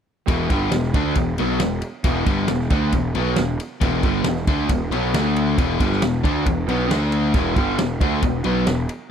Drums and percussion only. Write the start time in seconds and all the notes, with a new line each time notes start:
0.28 kick, ride
0.50 kick, ride
0.71 snare, ride
0.83 snare
0.94 kick, ride
1.15 kick, ride
1.38 ride
1.60 snare, ride
1.82 ride
2.04 kick, ride
2.26 kick, ride
2.48 snare, ride
2.60 snare
2.70 kick, ride
2.92 kick, ride
3.15 ride
3.36 snare, ride
3.60 ride
3.81 kick, ride
4.03 kick, ride
4.24 snare, ride
4.36 snare
4.47 kick, ride
4.69 kick, ride
4.92 ride
5.14 snare, ride
5.36 ride
5.58 kick, ride
5.80 kick, ride
5.92 snare
6.02 snare, ride
6.24 kick, ride
6.46 kick, ride
6.69 ride
6.91 snare, ride
7.12 ride
7.34 kick, ride
7.56 kick, ride
7.78 snare, ride
8.01 kick, ride
8.22 kick, ride
8.44 ride
8.67 snare, ride
8.89 ride